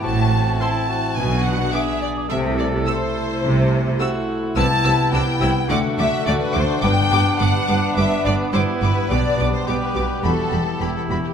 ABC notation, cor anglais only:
X:1
M:4/4
L:1/8
Q:1/4=106
K:Ador
V:1 name="Cor anglais"
F2 E F3 ^G2 | A4- A z F2 | [K:G] E2 D E F4 | D6 E2 |
D2 G2 F z E2 |]